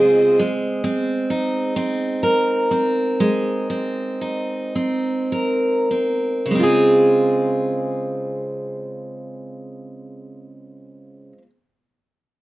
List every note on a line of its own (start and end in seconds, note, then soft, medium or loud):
0.00 0.37 C#3 medium
0.00 0.40 C#3 medium
0.00 0.39 G#3 medium
0.00 0.83 C4 soft
0.00 0.37 F4 medium
0.00 0.49 F4 soft
0.00 0.37 G#4 medium
0.00 2.23 G#4 medium
0.00 0.37 C5 medium
0.00 0.38 D#5 medium
0.39 3.20 G#3 medium
0.84 1.76 C4 soft
1.30 4.20 D#4 medium
1.76 2.71 C4 medium
2.23 5.31 A#4 medium
2.71 3.69 C4 soft
3.20 6.50 G#3 medium
3.70 4.75 C4 soft
4.21 6.59 D#4 soft
4.75 5.90 C4 soft
5.32 6.63 A#4 soft
5.91 6.55 C4 soft
6.46 11.32 C#3 medium
6.51 11.37 G#3 medium
6.55 11.42 C4 medium
6.59 11.46 F4 medium
6.59 11.50 G#4 medium